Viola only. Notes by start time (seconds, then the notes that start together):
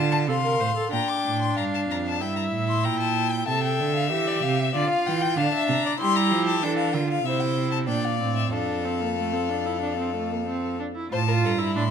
Already playing: F4
0.28 A4
0.44 A#4
0.60 C5
0.76 A4
0.92 D4
2.21 E4
3.48 A4
4.10 G4
4.75 F4
5.37 D4
5.99 E4
6.63 D4
6.95 F4
7.27 E4
7.89 D4
8.21 C4
8.53 D4
8.85 C4
9.01 A#3
9.18 A3
9.33 C4
9.50 D4
9.66 E4
9.81 D4
9.99 C4
10.16 A3
10.32 A#3
10.48 C4
10.80 D4
10.96 E4
11.12 F4
11.28 F4
11.58 E4
11.76 D4